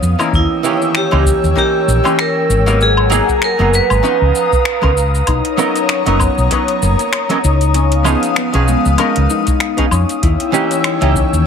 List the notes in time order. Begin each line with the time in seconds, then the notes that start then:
Already playing: F3 B3 C#4 D#4 G#4 F5 D#6
0.02 F2, shaker
0.19 E3 A#3 C#4 D#4 A#4, low woodblock, shaker
0.33 D#2 E4 C#5 G5 E6, kick, shaker
0.63 D#3 E3 A#3 C#4 G4, shaker
0.82 shaker
0.95 G4, finger snap, shaker
1.11 C#2 E3 A#3 C#4 D#4 G4, low woodblock
1.26 kick, shaker
1.43 D#2, shaker
1.55 E3 A#3 C#4 D#4 G4 A#4, kick, shaker
1.88 A#1, shaker
2.04 E3 A#3 C#4 D#4 G4, low woodblock, shaker
2.19 A#4, finger snap, shaker
2.49 G#1, shaker
2.66 F#3 A#3 B3 D#4 A#4, shaker
2.80 G#4 F#5 G#5 A#5, shaker
2.97 low woodblock
3.10 F#3 A#3 B3 D#4 G#4, shaker
3.29 kick, shaker
3.42 A#4, finger snap, shaker
3.59 F#1 F#3 A#3 B3 D#4 G#4
3.74 B4, shaker
3.90 G#1, low woodblock, shaker
4.03 F3 B3 C#4 D#4 B4 F5 A#5 D#6, shaker
4.21 C#2
4.35 shaker
4.52 kick, shaker
4.65 finger snap, shaker
4.82 C#2 F3 B3 C#4 D#4 A#4, kick, low woodblock
4.97 shaker
5.15 shaker
5.27 B1 D#4 C#5 A#5 D#6, kick, closed hi-hat, low woodblock, shaker
5.45 closed hi-hat
5.57 F#3 B3 C#4 D#4 A#4, shaker
5.76 closed hi-hat, shaker
5.89 C#4, finger snap, closed hi-hat, shaker
6.06 F#1 F#3 B3 C#4 D#4 A#4, closed hi-hat
6.20 B3, kick, low woodblock, shaker
6.38 B1, shaker
6.51 F#3 B3 C#4 D#4 B4, kick, closed hi-hat, shaker
6.68 closed hi-hat
6.82 F#1 A#3, shaker
6.99 closed hi-hat, shaker
7.13 finger snap, closed hi-hat, low woodblock, shaker
7.29 F#3 B3 C#4 D#4 A#4, closed hi-hat
7.44 C#2 D#4, shaker
7.61 closed hi-hat, shaker
7.74 B3 C#4 F5 D#6, closed hi-hat, shaker
7.92 closed hi-hat
8.04 F3 B3 C#4 D#4 G#4, low woodblock, shaker
8.23 closed hi-hat, shaker
8.36 B3, finger snap, closed hi-hat, shaker
8.53 B1 F3 B3 C#4 D#4 G#4, closed hi-hat
8.68 G#3, shaker
8.85 C#2, shaker
8.98 F3 B3 C#4 D#4 A#4, closed hi-hat, low woodblock, shaker
9.16 C#2, closed hi-hat
9.30 D#4, shaker
9.47 kick, closed hi-hat, shaker
9.60 finger snap, closed hi-hat, shaker
9.77 F3 B3 C#4 D#4 G#4, kick, closed hi-hat
9.91 F2 C#4, low woodblock, shaker
10.09 closed hi-hat, shaker
10.22 D#2 E4 C#5 G5 E6, kick, closed hi-hat, shaker
10.40 closed hi-hat
10.52 E3 A#3 C#4 G4 D#5, shaker
10.71 closed hi-hat, shaker
10.84 D#4, finger snap, closed hi-hat, low woodblock, shaker
11.01 C#2 E3 A#3 C#4 G4 D#5, closed hi-hat
11.15 C#4, kick, shaker
11.33 D#2, shaker